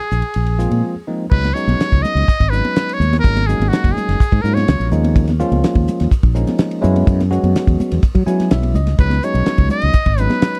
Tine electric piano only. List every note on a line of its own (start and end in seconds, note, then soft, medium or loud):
0.59 0.94 F3 medium
0.59 0.94 G#3 medium
0.59 0.94 A#3 medium
0.59 0.94 C4 medium
0.59 0.94 F4 medium
1.08 1.25 F3 medium
1.08 1.25 G#3 medium
1.08 1.25 A#3 medium
1.08 1.25 C4 medium
1.08 1.25 D#4 medium
1.31 1.49 F#3 medium
1.31 1.49 G#3 medium
1.31 1.49 B3 medium
1.31 1.49 C#4 medium
1.31 1.49 D#4 medium
1.55 2.24 F#3 medium
1.55 2.25 G#3 medium
1.55 2.24 B3 medium
1.55 2.25 C#4 medium
1.55 2.25 D#4 medium
2.53 3.04 F#3 medium
2.53 3.04 G#3 medium
2.53 3.04 B3 medium
2.53 3.04 C#4 medium
2.53 3.04 D#4 medium
3.24 3.42 F#3 medium
3.24 3.41 G#3 medium
3.24 3.41 A#3 medium
3.24 3.41 C#4 medium
3.24 3.41 D#4 medium
3.49 4.18 F#3 medium
3.49 4.18 G#3 medium
3.49 4.18 A#3 medium
3.49 4.18 C#4 medium
3.49 4.18 D#4 medium
4.45 4.93 F#3 medium
4.45 4.90 G#3 medium
4.45 4.91 A#3 medium
4.45 4.91 C#4 medium
4.45 4.92 F4 medium
4.92 5.30 F3 medium
4.92 5.30 G#3 medium
4.92 5.30 A#3 medium
4.92 5.30 C#4 medium
4.92 5.30 D#4 medium
5.40 6.09 F3 medium
5.40 6.09 G#3 medium
5.40 6.09 A#3 medium
5.40 6.09 C#4 medium
5.40 6.09 F4 loud
6.35 6.83 F3 medium
6.35 6.80 G#3 medium
6.35 6.83 A#3 medium
6.35 6.81 C#4 medium
6.35 6.83 D#4 medium
6.81 7.21 F#3 medium
6.81 7.21 G#3 medium
6.81 7.21 B3 medium
6.81 7.21 C#4 medium
6.81 7.21 E4 loud
7.31 8.00 F#3 medium
7.31 8.00 G#3 medium
7.31 8.00 B3 medium
7.31 8.00 C#4 medium
7.31 8.00 F#4 medium
8.26 8.78 F#3 medium
8.26 8.78 G#3 medium
8.26 8.79 B3 medium
8.26 8.79 C#4 medium
8.26 8.79 E4 medium
8.26 8.49 G#5 medium
8.52 8.74 E5 medium
8.75 8.97 D#5 medium
8.99 9.16 F#3 medium
8.99 9.17 G#3 medium
8.99 9.17 B3 medium
8.99 9.17 C#4 medium
8.99 9.17 D#4 medium
9.24 9.92 F#3 medium
9.24 9.92 G#3 medium
9.24 9.92 B3 medium
9.24 9.92 C#4 medium
9.24 9.92 D#4 medium
10.19 10.60 F#3 medium
10.19 10.60 G#3 medium
10.19 10.60 B3 medium
10.19 10.60 C#4 medium
10.19 10.60 D#4 medium